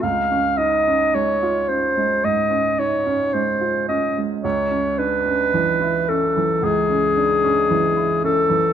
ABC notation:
X:1
M:4/4
L:1/16
Q:1/4=55
K:C#phr
V:1 name="Clarinet"
^e2 ^d2 c2 =c2 d2 ^c2 =c2 d2 | c2 B4 A2 G6 A2 |]
V:2 name="Grand piano"
C,, C ^D C G, ^E C G, G,, C D C G, E C G, | C,, C D C E, E C E, C,, C D C E, E C E, |]